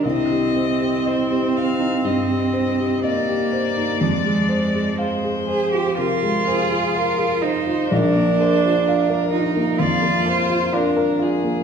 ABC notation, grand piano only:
X:1
M:4/4
L:1/16
Q:1/4=62
K:Cm
V:1 name="Grand piano"
C,, G, c G e G c E G,, G, c G e G c E | F,, A, c A f A c F C, A, c A f A c F | B,,, B, B F f B F B, F,, B, B F f B F B, |]